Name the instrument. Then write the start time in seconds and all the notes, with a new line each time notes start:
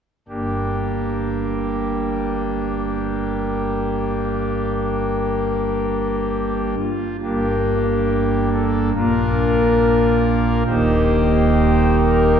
pipe organ
0.28 G1 G2 A#3 D4 G4
6.78 F4
7.23 G1 G2 A#3 D4 G4
8.52 A4
8.95 A#1 A#2 A#3 D4 F4 A#4
10.67 D#1 D#2 A#3 D#4 G4 C5
12.00 A#4